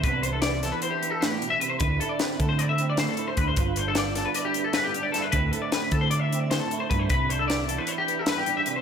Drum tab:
HH |xxxxxxxxx|xxxxxxxxx|xxxxxxxxx|xxxxxxxxx|
SD |--oo--o--|--o---o--|--oo--o-o|--o---o--|
BD |o--------|o--o----o|o--------|o--o----o|

HH |xxxxxxxxx|
SD |--o---o--|
BD |o--------|